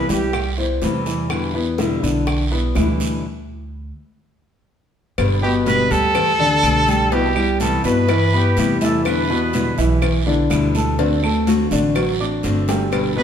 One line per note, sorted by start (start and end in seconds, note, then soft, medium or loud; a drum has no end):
0.09 0.78 C2 loud
0.09 0.49 G3 medium
0.09 0.33 G3 soft
0.09 0.33 B3 soft
0.09 0.32 E4 soft
0.09 0.49 G4 medium
0.09 0.55 G4 medium
0.09 high bongo soft
0.09 high conga medium
0.09 short guiro medium
0.33 muted nylon-string guitar stroke medium
0.33 high bongo medium
0.33 high conga soft
0.33 long guiro medium
0.33 claves medium
0.58 0.82 G3 soft
0.58 0.82 B3 soft
0.58 0.81 E4 medium
0.58 0.98 C5 medium
0.58 high bongo soft
0.58 high conga soft
0.82 1.97 E2 medium
0.82 1.29 C3 medium
0.82 1.30 E3 medium
0.82 1.30 G3 medium
0.82 1.30 B3 medium
0.82 1.30 E4 medium
0.82 high bongo soft
0.82 low bongo medium
0.82 high conga medium
0.82 short guiro medium
1.06 1.46 E3 medium
1.06 1.46 E4 medium
1.06 high bongo soft
1.06 short guiro medium
1.30 1.53 B2 medium
1.30 1.54 D3 medium
1.30 1.54 G3 medium
1.30 1.54 B3 medium
1.30 1.53 E4 medium
1.30 high bongo medium
1.30 high conga soft
1.30 long guiro medium
1.30 claves medium
1.54 1.78 G3 soft
1.54 1.94 B3 medium
1.54 1.78 B3 soft
1.54 1.78 E4 soft
1.54 1.95 B4 medium
1.54 high conga soft
1.78 2.02 B2 medium
1.78 2.02 D3 medium
1.78 2.02 G3 medium
1.78 2.02 B3 medium
1.78 2.02 E4 medium
1.78 high bongo medium
1.78 high conga medium
1.78 short guiro medium
2.03 2.72 B1 medium
2.03 2.43 D3 medium
2.03 2.26 G3 soft
2.03 2.26 B3 soft
2.03 2.43 D4 medium
2.03 2.26 E4 medium
2.03 high bongo soft
2.03 high conga soft
2.03 short guiro medium
2.27 muted nylon-string guitar stroke medium
2.27 high bongo medium
2.27 high conga soft
2.27 long guiro medium
2.27 claves medium
2.51 2.75 G3 soft
2.51 2.72 B3 medium
2.51 2.75 B3 soft
2.51 2.74 E4 medium
2.51 2.72 B4 medium
2.51 high bongo soft
2.51 high conga soft
2.75 3.91 D2 medium
2.75 3.23 B2 medium
2.75 3.23 D3 medium
2.75 3.16 E3 medium
2.75 3.23 G3 medium
2.75 3.23 B3 medium
2.75 3.23 E4 medium
2.75 3.16 E4 medium
2.75 high bongo soft
2.75 low bongo medium
2.75 high conga medium
2.75 short guiro medium
2.75 claves medium
3.00 high bongo soft
3.00 high conga medium
3.00 short guiro medium
5.18 5.87 G1 loud
5.18 5.41 B2 medium
5.18 5.41 D3 medium
5.18 5.42 G3 medium
5.18 5.41 B3 medium
5.18 5.40 G4 medium
5.18 cowbell loud
5.18 high conga soft
5.18 long guiro medium
5.18 claves medium
5.41 5.82 B2 medium
5.41 5.65 G3 soft
5.41 5.66 B3 medium
5.41 5.83 B3 medium
5.41 5.65 G4 medium
5.41 5.53 G4 medium
5.41 5.83 B4 medium
5.41 high conga soft
5.66 5.89 B2 medium
5.66 5.89 D3 medium
5.66 5.90 G3 medium
5.66 5.90 B3 medium
5.66 5.89 G4 medium
5.66 5.93 B4 loud
5.66 cowbell medium
5.66 high conga loud
5.66 short guiro medium
5.90 6.59 D2 loud
5.90 6.31 G3 medium
5.90 6.14 G3 soft
5.90 6.14 B3 soft
5.90 6.14 G4 medium
5.90 6.31 G4 medium
5.90 7.14 A4 loud
5.90 6.31 G5 medium
5.90 short guiro medium
6.15 muted nylon-string guitar stroke medium
6.15 cowbell loud
6.15 high conga soft
6.15 low conga medium
6.15 long guiro medium
6.15 claves medium
6.39 6.79 D3 medium
6.39 6.62 G3 soft
6.39 6.63 B3 soft
6.39 6.79 D4 medium
6.39 6.62 G4 medium
6.39 6.79 D5 medium
6.39 high conga soft
6.39 low conga medium
6.63 7.78 C2 medium
6.63 7.10 B2 medium
6.63 7.11 D3 medium
6.63 7.11 G3 medium
6.63 7.11 B3 medium
6.63 7.11 G4 medium
6.63 cowbell medium
6.63 high conga medium
6.63 short guiro medium
6.63 claves medium
6.88 7.07 G3 medium
6.88 7.08 G4 medium
6.88 7.08 G5 medium
6.88 high conga medium
6.88 short guiro medium
7.12 7.32 B2 medium
7.12 7.35 C3 medium
7.12 7.35 E3 medium
7.12 7.35 G3 medium
7.12 7.32 B3 medium
7.12 7.35 B3 medium
7.12 7.35 E4 medium
7.12 7.60 G4 loud
7.12 7.32 B4 medium
7.12 cowbell loud
7.12 high conga soft
7.12 long guiro medium
7.36 7.76 G3 medium
7.36 7.60 G3 soft
7.36 7.60 B3 soft
7.36 7.59 E4 medium
7.36 7.76 G4 medium
7.36 7.76 G5 medium
7.36 high conga soft
7.36 claves medium
7.60 7.83 C3 medium
7.60 7.84 E3 medium
7.60 7.84 G3 medium
7.60 7.84 B3 medium
7.60 7.83 E4 medium
7.60 7.83 A4 medium
7.60 cowbell medium
7.60 high conga loud
7.60 short guiro medium
7.84 8.53 G2 medium
7.84 8.04 B2 medium
7.84 8.08 G3 soft
7.84 8.04 B3 medium
7.84 8.08 B3 soft
7.84 8.08 E4 medium
7.84 8.77 B4 loud
7.84 8.05 B4 medium
7.84 short guiro medium
8.08 8.28 E3 medium
8.08 8.29 E4 medium
8.08 8.29 E5 medium
8.08 muted nylon-string guitar stroke medium
8.08 cowbell loud
8.08 high conga soft
8.08 long guiro medium
8.08 claves medium
8.33 8.57 G3 soft
8.33 8.72 B3 medium
8.33 8.57 B3 medium
8.33 8.56 E4 soft
8.33 8.78 G4 medium
8.33 8.73 B4 medium
8.33 8.73 B5 medium
8.33 high conga soft
8.57 9.71 E2 medium
8.57 9.04 C3 medium
8.57 9.05 E3 medium
8.57 9.05 G3 medium
8.57 9.05 B3 medium
8.57 9.05 E4 medium
8.57 cowbell medium
8.57 high conga medium
8.57 short guiro medium
8.81 9.21 E3 medium
8.81 9.21 E4 medium
8.81 9.04 A4 medium
8.81 9.21 E5 medium
8.81 cowbell medium
8.81 high conga medium
8.81 short guiro medium
9.05 9.28 B2 medium
9.05 9.29 D3 medium
9.05 9.29 G3 medium
9.05 9.29 B3 medium
9.05 9.28 E4 medium
9.05 9.98 B4 loud
9.05 cowbell loud
9.05 high conga soft
9.05 long guiro medium
9.05 claves medium
9.29 9.69 B2 medium
9.29 9.53 G3 soft
9.29 9.69 B3 medium
9.29 9.53 B3 medium
9.29 9.53 E4 medium
9.29 9.70 B4 medium
9.29 high conga soft
9.53 9.77 B2 medium
9.53 9.77 D3 medium
9.53 9.77 G3 medium
9.53 9.77 B3 medium
9.53 9.77 E4 medium
9.53 cowbell medium
9.53 high conga loud
9.53 short guiro medium
9.78 10.46 B1 loud
9.78 10.18 E3 medium
9.78 10.02 G3 soft
9.78 10.02 B3 soft
9.78 10.01 E4 medium
9.78 10.18 E4 medium
9.78 10.18 E5 medium
9.78 short guiro medium
10.02 muted nylon-string guitar stroke medium
10.02 cowbell loud
10.02 high conga soft
10.02 low conga medium
10.02 long guiro medium
10.02 claves medium
10.26 10.66 D3 medium
10.26 10.50 G3 soft
10.26 10.50 B3 medium
10.26 10.66 D4 medium
10.26 10.49 E4 medium
10.26 10.66 D5 medium
10.26 high conga soft
10.50 11.65 D2 loud
10.50 10.97 B2 medium
10.50 10.97 D3 medium
10.50 10.98 G3 medium
10.50 10.98 B3 medium
10.50 10.98 E4 medium
10.50 cowbell medium
10.50 high conga medium
10.50 short guiro medium
10.50 claves medium
10.75 10.95 A3 medium
10.75 10.95 A4 medium
10.75 10.95 A5 medium
10.75 high conga medium
10.75 short guiro medium
10.99 11.22 D3 medium
10.99 11.19 D3 medium
10.99 11.22 A3 medium
10.99 11.22 C4 medium
10.99 11.19 D4 medium
10.99 11.21 F#4 medium
10.99 11.19 D5 medium
10.99 cowbell loud
10.99 high conga soft
10.99 long guiro medium
11.22 11.63 A3 medium
11.22 11.46 A3 soft
11.22 11.46 C4 soft
11.22 11.46 F#4 soft
11.22 11.63 A4 medium
11.22 11.63 A5 medium
11.22 high conga soft
11.22 claves medium
11.47 11.70 D3 medium
11.47 11.71 A3 medium
11.47 11.70 C4 medium
11.47 11.70 F#4 medium
11.47 cowbell medium
11.47 high conga loud
11.47 short guiro medium
11.71 12.40 A1 medium
11.71 11.92 D3 medium
11.71 11.95 A3 soft
11.71 11.95 C4 soft
11.71 11.92 D4 medium
11.71 11.94 F#4 soft
11.71 11.92 D5 medium
11.71 short guiro medium
11.95 12.16 F#3 medium
11.95 12.16 F#4 medium
11.95 12.16 F#5 medium
11.95 muted nylon-string guitar stroke medium
11.95 cowbell loud
11.95 high conga soft
11.95 long guiro medium
11.95 claves medium
12.20 12.43 A3 soft
12.20 12.43 C4 soft
12.20 12.60 D4 medium
12.20 12.43 F#4 soft
12.20 12.60 D5 medium
12.20 12.60 D6 medium
12.20 high conga soft
12.43 13.23 G1 medium
12.43 12.91 D3 medium
12.43 12.92 A3 medium
12.43 12.92 C4 medium
12.43 12.92 F#4 medium
12.43 cowbell medium
12.43 high conga medium
12.43 short guiro medium
12.68 13.08 G3 medium
12.68 13.08 G5 medium
12.68 cowbell medium
12.68 high bongo medium
12.68 high conga medium
12.68 short guiro medium
12.91 13.15 B2 medium
12.91 13.15 D3 medium
12.91 13.16 G3 medium
12.91 13.15 B3 medium
12.91 13.14 G4 medium
12.91 cowbell loud
12.91 high conga soft
12.91 long guiro medium
12.91 claves medium
13.15 13.23 B2 medium
13.15 13.23 G3 soft
13.15 13.23 B3 soft
13.15 13.23 B3 medium
13.15 13.23 G4 medium
13.15 13.23 B4 medium
13.15 13.23 B4 loud
13.15 high conga soft